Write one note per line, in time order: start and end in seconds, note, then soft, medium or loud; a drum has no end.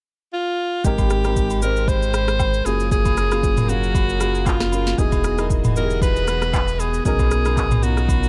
0.33 0.86 F4 medium
0.84 2.62 G#1 medium
0.84 1.16 G#3 medium
0.84 2.64 G#3 medium
0.84 2.64 C4 medium
0.84 1.16 C4 medium
0.84 1.17 D#4 medium
0.84 2.64 G4 medium
0.84 1.62 G4 loud
0.84 1.17 G4 medium
0.84 1.17 A#4 loud
0.84 kick loud
0.84 shaker medium
0.98 kick medium
0.98 high agogo medium
0.98 shaker medium
1.10 cross-stick medium
1.10 shaker medium
1.24 1.55 G#3 medium
1.24 1.55 C4 medium
1.24 1.56 D#4 medium
1.24 1.56 G4 medium
1.24 1.56 A#4 medium
1.24 cross-stick medium
1.24 high agogo medium
1.24 shaker medium
1.36 kick loud
1.36 shaker medium
1.50 high agogo medium
1.50 shaker medium
1.62 2.45 G#3 medium
1.62 2.46 C4 medium
1.62 2.46 D#4 medium
1.62 2.46 G4 medium
1.62 1.90 A#4 loud
1.62 2.46 C5 medium
1.62 shaker loud
1.76 shaker soft
1.88 2.67 C5 loud
1.88 kick loud
1.88 high agogo medium
1.88 shaker medium
2.02 shaker soft
2.14 cross-stick loud
2.14 high agogo medium
2.14 shaker loud
2.28 cross-stick loud
2.28 shaker soft
2.39 kick medium
2.39 high agogo medium
2.39 low woodblock medium
2.39 shaker medium
2.54 shaker soft
2.65 4.94 F#1 medium
2.65 3.17 F#3 medium
2.65 4.96 F#3 medium
2.65 3.17 A#3 medium
2.65 4.96 C#4 medium
2.65 3.18 C#4 medium
2.65 3.18 F4 medium
2.65 7.01 G#4 medium
2.65 2.91 G#4 loud
2.65 3.18 G#4 medium
2.65 4.96 A#4 medium
2.65 4.96 F5 medium
2.65 high agogo medium
2.65 shaker medium
2.80 shaker medium
2.92 3.71 G#4 loud
2.92 kick loud
2.92 shaker medium
3.05 kick medium
3.05 high agogo medium
3.05 shaker medium
3.17 cross-stick loud
3.17 shaker medium
3.31 3.62 F#3 medium
3.31 3.62 A#3 medium
3.31 3.63 C#4 medium
3.31 3.63 F4 medium
3.31 3.63 G#4 medium
3.31 cross-stick medium
3.31 high agogo medium
3.31 shaker medium
3.43 kick loud
3.43 shaker medium
3.57 mid tom loud
3.57 high agogo medium
3.57 shaker medium
3.69 4.11 F#3 medium
3.69 4.12 A#3 medium
3.69 4.12 C#4 medium
3.69 4.48 F#4 loud
3.69 4.12 G#4 medium
3.69 4.12 F5 medium
3.69 shaker medium
3.83 shaker soft
3.95 kick loud
3.95 high agogo medium
3.95 shaker medium
4.09 shaker soft
4.20 4.63 F#3 medium
4.20 4.63 A#3 medium
4.20 4.64 C#4 medium
4.20 4.64 F4 medium
4.20 4.64 G#4 medium
4.20 cross-stick medium
4.20 high agogo medium
4.20 shaker loud
4.35 shaker soft
4.46 5.00 F4 medium
4.46 kick loud
4.46 clap loud
4.46 high agogo medium
4.46 low woodblock medium
4.46 shaker medium
4.60 cross-stick medium
4.60 snare medium
4.60 shaker soft
4.72 4.94 F#3 medium
4.72 4.94 A#3 medium
4.72 4.94 C#4 medium
4.72 4.95 F4 medium
4.72 4.95 A#4 medium
4.72 high agogo medium
4.72 shaker medium
4.87 snare medium
4.87 shaker medium
4.98 7.01 E1 medium
4.98 7.03 E3 medium
4.98 5.30 F#3 loud
4.98 8.29 B3 medium
4.98 5.30 B3 medium
4.98 5.30 D#4 medium
4.98 5.31 E4 medium
4.98 7.03 F#4 medium
4.98 5.49 G#4 medium
4.98 5.31 G#4 loud
4.98 7.03 D#5 medium
4.98 kick loud
4.98 shaker medium
5.12 kick medium
5.12 high agogo medium
5.12 shaker medium
5.24 cross-stick loud
5.24 shaker loud
5.38 5.69 F#3 medium
5.38 5.69 B3 medium
5.38 5.69 D#4 medium
5.38 5.70 E4 medium
5.38 5.70 A#4 medium
5.38 cross-stick medium
5.38 high agogo medium
5.38 shaker medium
5.50 kick loud
5.50 shaker medium
5.64 mid tom loud
5.64 high agogo medium
5.64 shaker medium
5.76 6.59 F#3 medium
5.76 6.59 B3 medium
5.76 6.60 D#4 medium
5.76 6.60 E4 medium
5.76 5.84 G4 medium
5.76 6.01 A#4 medium
5.76 shaker medium
5.84 6.63 G#4 medium
5.90 shaker soft
6.02 6.82 B4 loud
6.02 kick loud
6.02 high agogo medium
6.02 shaker medium
6.16 shaker soft
6.28 cross-stick loud
6.28 high agogo medium
6.28 shaker loud
6.42 cross-stick loud
6.42 shaker soft
6.53 kick loud
6.53 clap loud
6.53 high agogo medium
6.53 low woodblock medium
6.53 shaker medium
6.68 shaker medium
6.79 7.05 G#4 medium
6.79 high agogo medium
6.79 shaker medium
6.94 shaker medium
7.05 8.29 B1 medium
7.05 7.37 F#3 loud
7.05 7.37 B3 medium
7.05 7.37 C#4 medium
7.05 8.29 D#4 medium
7.05 7.37 D#4 medium
7.05 7.85 G#4 loud
7.05 8.29 A#4 medium
7.05 7.38 A#4 loud
7.05 kick loud
7.05 shaker medium
7.19 kick medium
7.19 high agogo medium
7.19 shaker medium
7.31 cross-stick loud
7.31 shaker medium
7.45 7.76 F#3 medium
7.45 7.76 B3 medium
7.45 7.76 C#4 medium
7.45 7.77 D#4 medium
7.45 7.77 A#4 medium
7.45 cross-stick medium
7.45 high agogo medium
7.45 shaker medium
7.57 kick loud
7.57 clap medium
7.57 shaker medium
7.71 mid tom loud
7.71 high agogo medium
7.71 shaker medium
7.83 8.25 F#3 medium
7.83 8.25 B3 medium
7.83 8.26 C#4 medium
7.83 8.26 D#4 medium
7.83 7.91 F4 medium
7.83 8.29 F#4 loud
7.83 shaker loud
7.91 8.29 F#4 medium
7.97 cross-stick medium
7.97 shaker soft
8.09 kick loud
8.09 high agogo medium
8.09 shaker medium
8.23 shaker soft